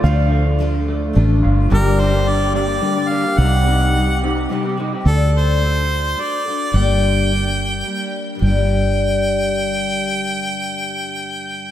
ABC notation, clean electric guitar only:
X:1
M:3/4
L:1/16
Q:1/4=107
K:Dphr
V:1 name="Clean electric guitar"
[D,A,DF]2 A,2 D,2 A,2 D2 F2 | [K:Gm] [G,,D,G,B,DG]2 [G,B,DG] [G,B,DG]3 [G,B,DG] [G,B,DG] [G,,D,G,B,DG] [G,B,DG] [G,B,DG] [G,B,DG] | [C,G,CEG]2 [G,CEG] [CEG]3 [G,CEG] [CEG] [C,G,CEG] [CEG] [G,CEG] [CEG] | z12 |
z12 | z12 | z12 |]